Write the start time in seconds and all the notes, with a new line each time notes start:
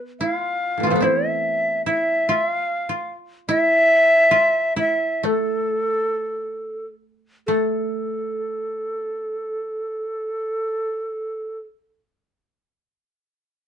Already playing: B3 E4
0.20 E4 F5
0.35 F4
0.78 A2 B2
0.83 C3 E3 F4
0.90 F3 A3
0.96 B3
1.00 C4 E4 C5
1.30 E5
1.86 E4 E5
2.28 F4 E5
2.48 F5
2.89 F4
3.49 E4 E5
4.31 F4
4.76 E4 E5
5.23 A3 A4
7.47 A3 A4